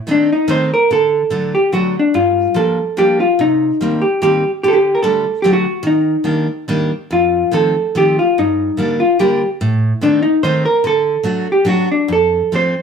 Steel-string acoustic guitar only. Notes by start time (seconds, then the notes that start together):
0.07 D#3 A3 C4 D#4
0.48 D#3 A3 C4 D#4
0.91 D3
1.30 D3 F#3 A3 D4
1.72 D3 F#3 A3 D4
2.14 G2
2.54 F3 G3 A#3 D4
2.97 F3 G3 A#3 D4
3.39 C3
3.81 D#3 G3 A#3 C4
4.22 D#3 G3 A#3 C4
4.64 D3
5.03 D3 G3 A3 D4
5.44 D3 F#3 A3 D4
5.83 D#3
6.24 D#3 G3 A#3 D4
6.68 D#3 G3 A#3 D4
7.11 F2
7.51 D#3 F3 A3 C4
7.95 D#3 F3 A3 C4
8.38 G2
8.77 D3 G3 A#3 D4
9.19 D3 G3 A#3 D4
9.61 A2
10.01 D#3 A3 C4 D#4
10.43 D#3 A3 C4 D#4
10.84 D3
11.23 F#3 A3 D4 F#4
11.65 F#3 A3 D4 F#4
12.08 F2
12.52 F3 A3 C4 D4